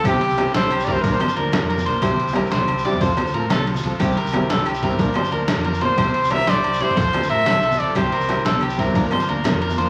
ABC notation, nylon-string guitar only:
X:1
M:12/8
L:1/8
Q:3/8=121
K:Cmix
V:1 name="Nylon-string guitar"
[CEG] z [CEG] z2 [CEG] [F,B,DB] z [F,B,DB] z2 [B,DB] | [G,CEG] z [G,CEG] z2 [G,CEG] [F,CFA] z [F,CFA] z2 [F,CFA] | [G,CEG] z [G,CEG] z2 [G,CEG] [F,B,DB] z [F,B,DB] z2 [F,B,DB] | [G,CEG] z [G,CE] z2 [G,CEG] [F,CFA] z [F,CFA] z2 [F,CFA] |
[G,CEG] z [G,CEG] z2 [G,CEG] [F,B,DB] z [F,B,DB] z2 [F,B,DB] |]